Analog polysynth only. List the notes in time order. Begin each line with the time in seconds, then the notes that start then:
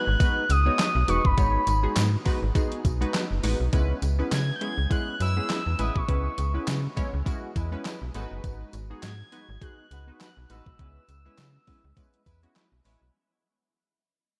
0.20 G#3 B3 D#4 F#4 B4
0.66 G#3 B3 D#4 F#4 C#5
1.08 G#3 B3 D#4 F#4 B4
1.37 G#3 B3 D#4 F#4 C#5
1.83 G#3 B3 D#4 F#4 G#4
2.25 G#3 B3 D#4 F#4 B4
2.55 G#3 B3 D#4 F#4 G#4
3.01 G#3 B3 D#4 F#4 B4
3.43 G#3 B3 D#4 F#4 B4
3.73 G#3 B3 C#4 E4 B4
4.19 G#3 B3 C#4 E4 B4
4.61 G#3 B3 C#4 E4 G#4
4.90 G#3 B3 C#4 E4 G#4
5.36 G#3 B3 C#4 E4 G#4
5.79 G#3 B3 C#4 E4 B4
6.08 G#3 B3 C#4 E4 B4
6.54 G#3 B3 C#4 E4 B4
6.96 G#3 B3 C#4 E4 C#5
7.25 G#3 B3 C#4 E4 F#4
7.72 G#3 B3 C#4 E4 B4
8.15 G#3 B3 D#4 F#4 A4
8.22 B4
8.90 G#3 B3 D#4 F#4 G#4
9.32 G#3 B3 D#4 F#4 B4
9.62 G#3 B3 D#4 F#4 G#4
10.07 G#3 B3 D#4 F#4 B4
10.50 G#3 B3 D#4 F#4 B4
10.79 G#3 B3 C#4 E4 B4
11.25 G#3 B3 C#4 E4 B4
11.67 G#3 B3 C#4 E4 B4
11.97 G#3 B3 C#4 E4 B4
12.43 G#3 B3 C#4 E4 F#4
12.85 G#3 B3 C#4 E4 C#5